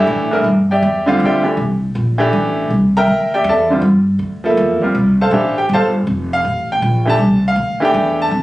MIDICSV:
0, 0, Header, 1, 5, 480
1, 0, Start_track
1, 0, Tempo, 374298
1, 590, Time_signature, 3, 2, 24, 8
1, 10808, End_track
2, 0, Start_track
2, 0, Title_t, "Grand piano"
2, 0, Program_c, 0, 0
2, 0, Note_on_c, 0, 52, 85
2, 0, Note_on_c, 0, 57, 75
2, 0, Note_on_c, 0, 62, 77
2, 0, Note_on_c, 0, 67, 95
2, 381, Note_off_c, 0, 52, 0
2, 388, Note_off_c, 0, 57, 0
2, 393, Note_off_c, 0, 62, 0
2, 394, Note_off_c, 0, 67, 0
2, 396, Note_on_c, 0, 36, 70
2, 405, Note_on_c, 0, 52, 69
2, 415, Note_on_c, 0, 57, 69
2, 416, Note_on_c, 0, 62, 64
2, 423, Note_on_c, 0, 70, 79
2, 563, Note_off_c, 0, 36, 0
2, 567, Note_off_c, 0, 52, 0
2, 572, Note_off_c, 0, 57, 0
2, 572, Note_off_c, 0, 62, 0
2, 576, Note_off_c, 0, 70, 0
2, 911, Note_on_c, 0, 79, 75
2, 921, Note_on_c, 0, 74, 67
2, 923, Note_on_c, 0, 67, 69
2, 928, Note_on_c, 0, 76, 63
2, 1349, Note_off_c, 0, 79, 0
2, 1354, Note_off_c, 0, 74, 0
2, 1355, Note_off_c, 0, 67, 0
2, 1358, Note_off_c, 0, 76, 0
2, 1362, Note_on_c, 0, 50, 77
2, 1367, Note_on_c, 0, 55, 68
2, 1375, Note_on_c, 0, 60, 67
2, 1380, Note_on_c, 0, 65, 82
2, 1394, Note_on_c, 0, 77, 76
2, 1554, Note_off_c, 0, 77, 0
2, 1607, Note_on_c, 0, 76, 59
2, 1607, Note_on_c, 0, 79, 81
2, 1609, Note_on_c, 0, 74, 62
2, 1610, Note_on_c, 0, 67, 64
2, 1817, Note_off_c, 0, 50, 0
2, 1820, Note_off_c, 0, 55, 0
2, 1824, Note_off_c, 0, 60, 0
2, 1826, Note_off_c, 0, 65, 0
2, 1830, Note_off_c, 0, 67, 0
2, 1835, Note_on_c, 0, 52, 67
2, 1838, Note_on_c, 0, 57, 57
2, 1849, Note_on_c, 0, 67, 70
2, 1851, Note_on_c, 0, 62, 63
2, 1874, Note_off_c, 0, 76, 0
2, 1874, Note_off_c, 0, 79, 0
2, 1876, Note_off_c, 0, 74, 0
2, 2002, Note_off_c, 0, 52, 0
2, 2003, Note_off_c, 0, 57, 0
2, 2009, Note_off_c, 0, 67, 0
2, 2010, Note_off_c, 0, 62, 0
2, 2798, Note_on_c, 0, 52, 83
2, 2808, Note_on_c, 0, 57, 73
2, 2814, Note_on_c, 0, 62, 71
2, 2821, Note_on_c, 0, 67, 86
2, 3426, Note_off_c, 0, 52, 0
2, 3431, Note_off_c, 0, 57, 0
2, 3434, Note_off_c, 0, 62, 0
2, 3437, Note_off_c, 0, 67, 0
2, 3806, Note_on_c, 0, 82, 93
2, 3811, Note_on_c, 0, 70, 76
2, 3816, Note_on_c, 0, 79, 83
2, 3817, Note_on_c, 0, 76, 78
2, 4237, Note_off_c, 0, 82, 0
2, 4240, Note_off_c, 0, 70, 0
2, 4243, Note_off_c, 0, 76, 0
2, 4243, Note_off_c, 0, 79, 0
2, 4285, Note_on_c, 0, 79, 73
2, 4291, Note_on_c, 0, 74, 64
2, 4295, Note_on_c, 0, 67, 64
2, 4303, Note_on_c, 0, 76, 65
2, 4439, Note_off_c, 0, 79, 0
2, 4442, Note_off_c, 0, 74, 0
2, 4445, Note_off_c, 0, 67, 0
2, 4449, Note_off_c, 0, 76, 0
2, 4476, Note_on_c, 0, 76, 66
2, 4476, Note_on_c, 0, 81, 76
2, 4481, Note_on_c, 0, 74, 67
2, 4487, Note_on_c, 0, 69, 70
2, 4745, Note_on_c, 0, 50, 61
2, 4749, Note_off_c, 0, 76, 0
2, 4749, Note_off_c, 0, 81, 0
2, 4751, Note_off_c, 0, 74, 0
2, 4755, Note_off_c, 0, 69, 0
2, 4755, Note_on_c, 0, 55, 57
2, 4764, Note_on_c, 0, 60, 53
2, 4772, Note_on_c, 0, 65, 66
2, 4897, Note_off_c, 0, 50, 0
2, 4902, Note_off_c, 0, 55, 0
2, 4907, Note_off_c, 0, 60, 0
2, 4911, Note_off_c, 0, 65, 0
2, 5692, Note_on_c, 0, 53, 75
2, 5706, Note_on_c, 0, 58, 64
2, 5710, Note_on_c, 0, 64, 72
2, 5715, Note_on_c, 0, 69, 82
2, 6143, Note_off_c, 0, 53, 0
2, 6149, Note_off_c, 0, 58, 0
2, 6152, Note_off_c, 0, 64, 0
2, 6154, Note_off_c, 0, 69, 0
2, 6177, Note_on_c, 0, 55, 64
2, 6180, Note_on_c, 0, 60, 52
2, 6197, Note_on_c, 0, 65, 59
2, 6206, Note_on_c, 0, 70, 62
2, 6333, Note_off_c, 0, 55, 0
2, 6335, Note_off_c, 0, 60, 0
2, 6343, Note_off_c, 0, 65, 0
2, 6348, Note_off_c, 0, 70, 0
2, 6686, Note_on_c, 0, 69, 64
2, 6686, Note_on_c, 0, 81, 82
2, 6691, Note_on_c, 0, 72, 65
2, 6694, Note_on_c, 0, 77, 70
2, 6825, Note_on_c, 0, 52, 68
2, 6831, Note_on_c, 0, 57, 63
2, 6837, Note_on_c, 0, 62, 66
2, 6846, Note_on_c, 0, 67, 73
2, 7102, Note_off_c, 0, 52, 0
2, 7105, Note_off_c, 0, 57, 0
2, 7108, Note_off_c, 0, 62, 0
2, 7112, Note_off_c, 0, 67, 0
2, 7118, Note_off_c, 0, 69, 0
2, 7118, Note_off_c, 0, 81, 0
2, 7120, Note_off_c, 0, 72, 0
2, 7122, Note_off_c, 0, 77, 0
2, 7156, Note_on_c, 0, 79, 82
2, 7158, Note_on_c, 0, 67, 66
2, 7315, Note_off_c, 0, 79, 0
2, 7317, Note_off_c, 0, 67, 0
2, 7352, Note_on_c, 0, 81, 91
2, 7364, Note_on_c, 0, 77, 77
2, 7365, Note_on_c, 0, 69, 74
2, 7365, Note_on_c, 0, 72, 75
2, 7523, Note_off_c, 0, 81, 0
2, 7531, Note_off_c, 0, 69, 0
2, 7531, Note_off_c, 0, 72, 0
2, 7531, Note_off_c, 0, 77, 0
2, 8121, Note_on_c, 0, 77, 91
2, 8555, Note_off_c, 0, 77, 0
2, 8618, Note_on_c, 0, 79, 82
2, 9044, Note_off_c, 0, 79, 0
2, 9048, Note_on_c, 0, 52, 71
2, 9057, Note_on_c, 0, 57, 65
2, 9066, Note_on_c, 0, 62, 60
2, 9071, Note_on_c, 0, 67, 78
2, 9097, Note_on_c, 0, 81, 101
2, 9209, Note_off_c, 0, 52, 0
2, 9213, Note_off_c, 0, 57, 0
2, 9218, Note_off_c, 0, 62, 0
2, 9220, Note_off_c, 0, 67, 0
2, 9524, Note_off_c, 0, 81, 0
2, 9590, Note_on_c, 0, 77, 91
2, 10005, Note_on_c, 0, 52, 74
2, 10011, Note_off_c, 0, 77, 0
2, 10014, Note_on_c, 0, 57, 70
2, 10018, Note_on_c, 0, 62, 68
2, 10030, Note_on_c, 0, 67, 87
2, 10063, Note_on_c, 0, 79, 90
2, 10487, Note_off_c, 0, 79, 0
2, 10537, Note_on_c, 0, 81, 97
2, 10629, Note_off_c, 0, 52, 0
2, 10634, Note_off_c, 0, 57, 0
2, 10636, Note_off_c, 0, 62, 0
2, 10642, Note_off_c, 0, 67, 0
2, 10808, Note_off_c, 0, 81, 0
2, 10808, End_track
3, 0, Start_track
3, 0, Title_t, "Tenor saxophone"
3, 0, Program_c, 1, 66
3, 0, Note_on_c, 1, 64, 87
3, 523, Note_off_c, 1, 64, 0
3, 10808, End_track
4, 0, Start_track
4, 0, Title_t, "Upright bass"
4, 0, Program_c, 2, 32
4, 90, Note_on_c, 2, 45, 100
4, 559, Note_off_c, 2, 45, 0
4, 567, Note_on_c, 2, 43, 82
4, 1043, Note_off_c, 2, 43, 0
4, 1056, Note_on_c, 2, 40, 85
4, 1528, Note_off_c, 2, 40, 0
4, 1536, Note_on_c, 2, 38, 90
4, 2007, Note_off_c, 2, 38, 0
4, 2013, Note_on_c, 2, 36, 85
4, 2486, Note_off_c, 2, 36, 0
4, 2501, Note_on_c, 2, 34, 84
4, 2970, Note_off_c, 2, 34, 0
4, 2985, Note_on_c, 2, 33, 87
4, 3452, Note_off_c, 2, 33, 0
4, 3467, Note_on_c, 2, 36, 79
4, 3933, Note_off_c, 2, 36, 0
4, 3941, Note_on_c, 2, 38, 80
4, 4406, Note_off_c, 2, 38, 0
4, 4413, Note_on_c, 2, 40, 95
4, 4886, Note_off_c, 2, 40, 0
4, 4892, Note_on_c, 2, 43, 90
4, 5363, Note_off_c, 2, 43, 0
4, 5371, Note_on_c, 2, 38, 85
4, 5845, Note_off_c, 2, 38, 0
4, 5864, Note_on_c, 2, 40, 93
4, 6150, Note_off_c, 2, 40, 0
4, 6342, Note_on_c, 2, 36, 87
4, 6801, Note_off_c, 2, 36, 0
4, 6809, Note_on_c, 2, 33, 86
4, 7284, Note_off_c, 2, 33, 0
4, 7298, Note_on_c, 2, 31, 92
4, 7769, Note_off_c, 2, 31, 0
4, 7782, Note_on_c, 2, 29, 90
4, 8251, Note_off_c, 2, 29, 0
4, 8266, Note_on_c, 2, 33, 89
4, 8733, Note_off_c, 2, 33, 0
4, 8747, Note_on_c, 2, 34, 93
4, 9210, Note_off_c, 2, 34, 0
4, 9218, Note_on_c, 2, 36, 81
4, 9684, Note_off_c, 2, 36, 0
4, 9692, Note_on_c, 2, 38, 82
4, 10166, Note_off_c, 2, 38, 0
4, 10184, Note_on_c, 2, 40, 93
4, 10652, Note_off_c, 2, 40, 0
4, 10660, Note_on_c, 2, 41, 86
4, 10808, Note_off_c, 2, 41, 0
4, 10808, End_track
5, 0, Start_track
5, 0, Title_t, "Muted upright bass strokes"
5, 6159, Note_on_c, 9, 29, 37
5, 6287, Note_off_c, 9, 29, 0
5, 10808, End_track
0, 0, End_of_file